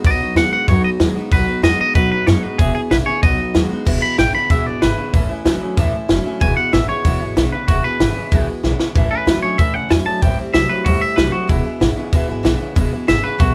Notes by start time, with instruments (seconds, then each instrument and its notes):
0.04 upright bass B1, steel-string acoustic guitar B2 F#3 B3 D#4 F#4, clean electric guitar B2 F#3 D#5, kick, open hi-hat
0.20 steel-string acoustic guitar B3 D#4 F#4, muted upright bass stroke
0.35 upright bass D#2, clean electric guitar B2 G#3 F#5, steel-string acoustic guitar F#3 B3 D#4 F#4, snare, open hi-hat
0.52 clean electric guitar B2 G#3 F#5, steel-string acoustic guitar B3 D#4 F#4, muted upright bass stroke
0.68 upright bass F#2, steel-string acoustic guitar B2 F#3 B3 D#4 F#4, clean electric guitar B2 F#3 C#5, kick, open hi-hat
0.83 steel-string acoustic guitar B3 D#4 F#4, clean electric guitar D#5, muted upright bass stroke
0.99 upright bass D#2, clean electric guitar B2 G#3, steel-string acoustic guitar F#3 B3 D#4 F#4, snare, open hi-hat
1.15 clean electric guitar B2 G#3, steel-string acoustic guitar B3 D#4 F#4, muted upright bass stroke
1.31 upright bass B1, steel-string acoustic guitar B2 F#3 B3 D#4 F#4, clean electric guitar B2 F#3 B4, kick, open hi-hat
1.47 steel-string acoustic guitar B3 D#4 F#4, muted upright bass stroke
1.62 upright bass E2, clean electric guitar B2 G#3 D#5, steel-string acoustic guitar F#3 B3 D#4 F#4, snare, open hi-hat
1.78 clean electric guitar B2 G#3 D#5, steel-string acoustic guitar B3 D#4 F#4, muted upright bass stroke
1.94 upright bass B1, steel-string acoustic guitar B2 F#3 B3 D#4 F#4, clean electric guitar B2 F#3 B4, kick, open hi-hat
2.10 steel-string acoustic guitar B3 D#4 F#4, clean electric guitar B4
2.26 upright bass F#2, clean electric guitar B2 G#3 C#5, steel-string acoustic guitar F#3 B3 D#4 F#4, snare, open hi-hat
2.42 clean electric guitar B2 G#3 B4, steel-string acoustic guitar B3 D#4 F#4, muted upright bass stroke
2.58 upright bass E1, steel-string acoustic guitar E2 B2 E3 B3 E4 G#4, clean electric guitar E2 B2 G#4, kick, open hi-hat
2.74 steel-string acoustic guitar E3 B3 E4 G#4, clean electric guitar G#4, muted upright bass stroke
2.90 upright bass A#1, clean electric guitar E2 C#3 B4, steel-string acoustic guitar E3 B3 E4 G#4, snare, open hi-hat
3.06 clean electric guitar E2 C#3 C#5, steel-string acoustic guitar E3 B3 E4 G#4, muted upright bass stroke
3.23 upright bass B1, steel-string acoustic guitar B2 F#3 B3 D#4 F#4, clean electric guitar B2 F#3 D#5, kick, open hi-hat
3.38 steel-string acoustic guitar B3 D#4 F#4, muted upright bass stroke
3.54 upright bass D#2, clean electric guitar B2 G#3, steel-string acoustic guitar F#3 B3 D#4 F#4, snare, open hi-hat
3.70 clean electric guitar B2 G#3, steel-string acoustic guitar B3 D#4 F#4, muted upright bass stroke
3.85 upright bass E1, steel-string acoustic guitar E2 B2 E3 G#3 B3 E4, clean electric guitar E2 B2, kick, crash
4.01 steel-string acoustic guitar E3 G#3 B3 E4, clean electric guitar B5
4.17 upright bass A1, clean electric guitar E2 C#3 G5, steel-string acoustic guitar E3 G#3 B3 E4, snare, open hi-hat
4.33 clean electric guitar E2 C#3 B5, steel-string acoustic guitar E3 G#3 B3 E4, muted upright bass stroke
4.50 upright bass E1, steel-string acoustic guitar E2 B2 E3 G#3 B3 E4, clean electric guitar E2 B2 E5, kick, open hi-hat
4.65 upright bass G#1, steel-string acoustic guitar E3 G#3 B3 E4, clean electric guitar D5
4.82 upright bass G#1, clean electric guitar E2 C#3 B4, steel-string acoustic guitar E3 G#3 B3 E4, snare, open hi-hat
4.97 clean electric guitar E2 C#3, steel-string acoustic guitar E3 G#3 B3 E4
5.13 upright bass A1, clean electric guitar A2 E3, steel-string acoustic guitar A2 E3 A3 C#4 E4, kick, open hi-hat
5.29 steel-string acoustic guitar A3 C#4 E4, muted upright bass stroke
5.45 upright bass C#2, clean electric guitar A2 F#3, steel-string acoustic guitar E3 A3 C#4 E4, snare, open hi-hat
5.61 clean electric guitar A2 F#3, steel-string acoustic guitar C#4 E4
5.65 steel-string acoustic guitar A3
5.77 upright bass E2, clean electric guitar A2 E3, steel-string acoustic guitar A2 E3 A3 C#4 E4, kick, open hi-hat
5.93 steel-string acoustic guitar A3 C#4 E4, muted upright bass stroke
6.08 upright bass F#1, clean electric guitar A2 F#3, steel-string acoustic guitar E3 A3 C#4 E4, snare, open hi-hat
6.24 clean electric guitar A2 F#3, steel-string acoustic guitar A3 C#4 E4, muted upright bass stroke
6.40 upright bass E1, steel-string acoustic guitar E2 B2 E3 G#3 B3 E4, clean electric guitar E2 B2 G#5, kick, open hi-hat
6.56 steel-string acoustic guitar G#3 B3 E4, clean electric guitar F#5
6.72 upright bass A1, clean electric guitar E2 C#3 E5, steel-string acoustic guitar E3 G#3 B3 E4, snare, open hi-hat
6.87 clean electric guitar E2 C#3 C#5, steel-string acoustic guitar E3 G#3 B3 E4, muted upright bass stroke
7.04 upright bass E1, steel-string acoustic guitar E2 B2 E3 G#3 B3 E4, clean electric guitar E2 B2, kick, open hi-hat
7.20 upright bass G#1, steel-string acoustic guitar E3 G#3 B3 E4
7.36 upright bass B1, clean electric guitar E2 C#3, steel-string acoustic guitar E3 G#3 B3 E4, snare, open hi-hat
7.52 clean electric guitar E2 C#3 B4, steel-string acoustic guitar E3 G#3 B3 E4, muted upright bass stroke
7.68 upright bass E1, steel-string acoustic guitar E2 B2 E3 G#3 B3 E4, clean electric guitar E2 B2 F#4, kick, open hi-hat
7.83 steel-string acoustic guitar E3 G#3 B3 E4, clean electric guitar B4
8.00 upright bass G#1, clean electric guitar E2 C#3, steel-string acoustic guitar E3 G#3 B3 E4, snare, open hi-hat
8.15 clean electric guitar E2 C#3, steel-string acoustic guitar E3 G#3 B3 E4
8.31 upright bass B1, steel-string acoustic guitar E2 B2 E3 G#3 B3 E4, clean electric guitar E2 B2, kick, open hi-hat
8.47 steel-string acoustic guitar E3 G#3 B3 E4, muted upright bass stroke
8.63 upright bass B1, clean electric guitar E2 C#3, steel-string acoustic guitar E3 G#3 B3 E4, snare
8.79 clean electric guitar E2 C#3, steel-string acoustic guitar E3 G#3 B3 E4, snare
8.95 upright bass A1, steel-string acoustic guitar A2 E3 A3 C#4 E4, clean electric guitar A2 E3, kick, open hi-hat
9.10 steel-string acoustic guitar A3 C#4 E4, clean electric guitar B4, muted upright bass stroke
9.26 upright bass C#2, clean electric guitar A2 F#3, steel-string acoustic guitar E3 A3 C#4 E4, snare, open hi-hat
9.42 clean electric guitar A2 F#3 C#5, steel-string acoustic guitar A3 C#4 E4, muted upright bass stroke
9.58 upright bass A1, steel-string acoustic guitar A2 E3 A3 C#4 E4, clean electric guitar A2 E3 E5, kick, open hi-hat
9.73 upright bass C#2, steel-string acoustic guitar A3 C#4 E4, clean electric guitar F#5
9.89 upright bass E2, clean electric guitar A2 F#3 G#5, steel-string acoustic guitar E3 A3 C#4 E4, snare, open hi-hat
10.05 clean electric guitar A2 F#3 A5, steel-string acoustic guitar A3 C#4 E4
10.22 upright bass A1, steel-string acoustic guitar A2 E3 G3 C4 E4, clean electric guitar A2 E3 G5, kick, open hi-hat
10.37 steel-string acoustic guitar G3 C4 E4
10.53 upright bass C2, clean electric guitar A2 F#3 E5, steel-string acoustic guitar E3 G3 C4 E4, snare, open hi-hat
10.69 clean electric guitar A2 F#3 B4, steel-string acoustic guitar G3 C4 E4
10.85 upright bass E2, steel-string acoustic guitar A2 E3 G3 C4 E4, clean electric guitar A2 E3 F#4, kick, open hi-hat
11.01 steel-string acoustic guitar G3 C4 E4, clean electric guitar E5
11.16 upright bass C2, clean electric guitar A2 F#3 B4, steel-string acoustic guitar E3 G3 C4 E4, snare, open hi-hat
11.32 clean electric guitar A2 F#3 F#4, steel-string acoustic guitar G3 C4 E4
11.47 upright bass E1, steel-string acoustic guitar E2 B2 E3 G#3 B3 E4, clean electric guitar E2 B2 E4, kick, open hi-hat
11.63 steel-string acoustic guitar E3 G#3 B3 E4
11.80 upright bass A1, clean electric guitar E2 C#3, steel-string acoustic guitar E3 G#3 B3 E4, snare, open hi-hat
11.96 clean electric guitar E2 C#3, steel-string acoustic guitar E3 G#3 B3 E4, muted upright bass stroke
12.13 upright bass E1, steel-string acoustic guitar E2 B2 E3 G#3 B3 E4, clean electric guitar E2 B2, kick, open hi-hat
12.28 upright bass G#1, steel-string acoustic guitar E3 G#3 B3 E4
12.43 upright bass B1, clean electric guitar E2 C#3, steel-string acoustic guitar E3 G#3 B3 E4, snare, open hi-hat
12.59 clean electric guitar E2 C#3, steel-string acoustic guitar E3 G#3 B3 E4
12.75 upright bass E1, steel-string acoustic guitar E2 B2 E3 G#3 B3 E4, clean electric guitar E2 B2, kick, open hi-hat
12.91 steel-string acoustic guitar E3 G#3 B3 E4
13.07 upright bass G#1, clean electric guitar E2 C#3 E5, steel-string acoustic guitar E3 G#3 B3 E4, snare, open hi-hat
13.23 clean electric guitar E2 C#3 B4, steel-string acoustic guitar E3 G#3 B3 E4
13.38 upright bass B1, steel-string acoustic guitar E2 B2 E3 G#3 B3 E4, clean electric guitar E2 B2 F#4, kick, open hi-hat